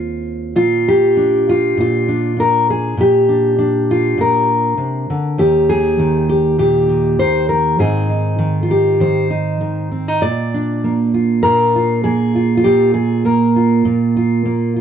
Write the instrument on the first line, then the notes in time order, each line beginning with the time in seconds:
steel-string acoustic guitar
Already playing: D#2 C4 F4 G#4
0.56 A#2 F4
0.88 G4
1.17 D4
1.49 F4
1.77 A#2 F4
2.08 D4
2.37 D4 A#4
2.70 G#4
2.97 A#2 G4
3.29 D4
3.58 D4
3.91 F4
4.18 A#2 A#4
4.77 C3
5.10 D3
5.38 D#2 D#3 G4
5.69 G#4
5.99 D#3
6.29 G4
6.58 A#2 G4
6.89 D#3
7.19 D#3 C5
7.49 A#4
7.79 G#2 D#3 C4 D#4 G#4
8.10 D#4
8.39 D#3
8.63 F4
8.71 G4
9.00 D#3 C5
9.30 D#4
9.61 D#3
9.91 C4
10.08 D#4
10.22 A#2 D5
10.54 D4
10.84 A#3
11.14 F4
11.43 A#2 A#4
11.76 F4
12.04 A#3 G#4
12.36 F4
12.57 F4
12.64 A#2 G4
12.94 G#4
13.25 A#3 A#4
13.56 F4
13.85 A#2
14.17 F4
14.46 A#3
14.76 F4